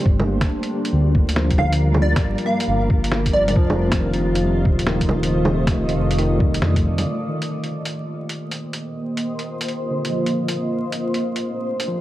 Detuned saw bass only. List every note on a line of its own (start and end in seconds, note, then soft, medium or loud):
0.06 0.48 G1 medium
0.93 2.15 D2 medium
2.17 2.36 G1 loud
2.68 3.57 G1 medium
3.56 4.64 F1 medium
4.65 5.96 D#1 loud
5.96 6.62 F1 medium
6.62 7.05 F2 loud